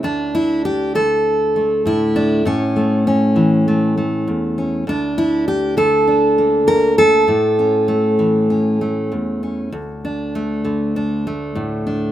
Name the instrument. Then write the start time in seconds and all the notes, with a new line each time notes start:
steel-string acoustic guitar
Already playing: E4
0.03 D2 D4
0.35 E4
0.65 G4
0.95 D3 A4
1.56 A3
1.86 A2 E4
2.16 D4
2.45 A2 C#4
2.76 A3
3.07 C#4
3.36 E3
3.68 A3
3.97 A3
4.27 E2
4.58 C#4
4.87 D2 D4
5.18 E4
5.48 G4
5.77 D3 A4
6.08 D4
6.38 A#3
6.67 D2 A#4
6.98 A4
7.28 A2
7.59 C#4
7.88 A3
8.19 E3
8.50 C#4
8.81 A3
9.12 E2
9.43 C#4
9.72 D2
10.05 D4
10.35 A3
10.65 D3
10.96 D4
11.27 A3
11.55 A2
11.87 D4